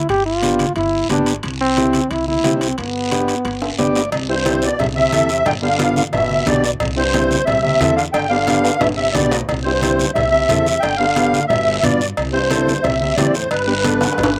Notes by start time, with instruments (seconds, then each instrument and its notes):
0.09 upright bass G1, trombone G4, high conga, high timbale, long guiro
0.26 trombone F4
0.42 transistor combo organ B3 D4 G4, high conga, high timbale, short guiro
0.59 high conga, high timbale, short guiro
0.76 upright bass G1, trombone E4, high conga, high timbale, long guiro
1.09 upright bass G1, transistor combo organ B3 D4 G4, trombone D4, high conga, high timbale, low timbale, short guiro
1.26 high timbale, short guiro
1.43 upright bass C2, high conga, high timbale, long guiro
1.61 trombone C4
1.77 transistor combo organ C4 E4 G4, high conga, high timbale, short guiro
1.93 high conga, high timbale, short guiro
2.11 upright bass C2, trombone E4, high conga, high timbale, long guiro
2.28 trombone E4, high conga
2.44 upright bass C2, transistor combo organ C4 E4 G4, high conga, high timbale, low timbale, short guiro
2.61 trombone C4, high timbale, short guiro
2.78 upright bass G1, trombone B3, high conga, high timbale, long guiro
3.11 transistor combo organ B3 D4 G4, high conga, high timbale, short guiro
3.28 high timbale, short guiro
3.45 upright bass G1, high conga, high timbale, long guiro
3.62 high timbale
3.78 upright bass G1, transistor combo organ B3 D4 G4 D5, high conga, low timbale, short guiro
3.95 low timbale, short guiro
4.12 upright bass C2, cowbell, high conga, long guiro
4.29 trombone G2, transistor combo organ C4 E4 G4, accordion C5
4.45 transistor combo organ C4 E4 G4, cowbell, high conga, short guiro
4.62 trombone B2, accordion D5, short guiro
4.79 upright bass C2, trombone C3, accordion E5, cowbell, high conga, low conga, long guiro
4.95 trombone C3, accordion E5, high conga
5.12 upright bass E2, transistor combo organ C4 E4 A4, cowbell, high conga, short guiro
5.29 short guiro
5.45 upright bass G1, trombone D3, accordion G5, cowbell, high conga, low conga, long guiro
5.62 trombone D3, transistor combo organ B3 D4 G4, accordion F5
5.79 transistor combo organ B3 D4 F4, cowbell, high conga, short guiro
5.96 trombone D3, accordion F5, high conga, short guiro
6.13 upright bass G1, trombone B2, accordion E5, cowbell, high conga, low conga, long guiro
6.30 high conga
6.46 upright bass B1, trombone B2, transistor combo organ B3 D4 G4, accordion D5, cowbell, high conga, low conga, short guiro
6.64 short guiro
6.80 upright bass C2, cowbell, high conga, low conga, long guiro
6.96 trombone G2, transistor combo organ C4 E4 G4, accordion C5
7.14 transistor combo organ C4 E4 G4, cowbell, high conga, short guiro
7.31 high conga, short guiro
7.45 upright bass C2, trombone C3, accordion E5, cowbell, high conga, low conga, long guiro
7.62 trombone C3, accordion E5, high conga
7.80 upright bass E2, transistor combo organ C4 E4 A4, cowbell, high conga, low timbale, short guiro
7.96 trombone D3, accordion F5, short guiro
8.13 upright bass G1, trombone D3, accordion G5, cowbell, high conga, long guiro
8.29 trombone D3, transistor combo organ B3 D4 G4, accordion F5
8.47 transistor combo organ B3 D4 G4, cowbell, high conga, short guiro
8.64 high timbale, short guiro
8.79 upright bass G1, trombone B2, accordion E5, cowbell, high conga, low conga, high timbale, long guiro
8.96 trombone C3, accordion E5
9.13 upright bass B1, trombone B2, transistor combo organ B3 D4 G4, accordion D5, cowbell, high conga, low conga, short guiro
9.31 low timbale, short guiro
9.48 upright bass C2, cowbell, high conga, low conga, long guiro
9.63 trombone G2, transistor combo organ C4 E4 G4, accordion C5
9.82 transistor combo organ C4 E4 G4, cowbell, high conga, short guiro
9.98 high conga, short guiro
10.14 upright bass C2, trombone C3, accordion E5, cowbell, high conga, low conga, long guiro
10.30 trombone C3, accordion E5, high conga
10.49 upright bass E2, transistor combo organ C4 E4 A4, cowbell, high conga, low conga, short guiro
10.66 short guiro
10.80 upright bass G1, trombone D3, accordion G5, cowbell, high conga, long guiro
10.97 trombone D3, transistor combo organ B3 D4 G4, accordion F5
11.16 transistor combo organ B3 D4 G4, cowbell, high conga, short guiro
11.33 high conga, short guiro
11.47 upright bass G1, trombone B2, accordion E5, cowbell, high conga, low conga, long guiro
11.82 upright bass G2, trombone B2, transistor combo organ B3 D4 F4, accordion D5, cowbell, high conga, low conga, short guiro
12.01 short guiro
12.17 upright bass C2, cowbell, high conga, long guiro
12.33 trombone G2, transistor combo organ C4 E4 G4, accordion C5
12.50 transistor combo organ C4 E4 A4, cowbell, high conga, short guiro
12.67 high conga, short guiro
12.83 upright bass C2, trombone C3, accordion E5, cowbell, high conga, low conga, long guiro
13.00 trombone C3, accordion E5, high conga
13.16 upright bass E2, trombone G2, transistor combo organ C4 E4 G4, accordion D5, cowbell, high conga, low timbale, short guiro
13.33 trombone A2, accordion C5, short guiro
13.51 upright bass G1, trombone G2, accordion B4, cowbell, high conga, long guiro
13.68 transistor combo organ B3 D4 G4
13.84 transistor combo organ B3 D4 A4, cowbell, high conga, short guiro
14.01 high conga, high timbale, short guiro
14.12 high timbale
14.18 upright bass G1, cowbell, high conga, low conga, long guiro
14.23 high timbale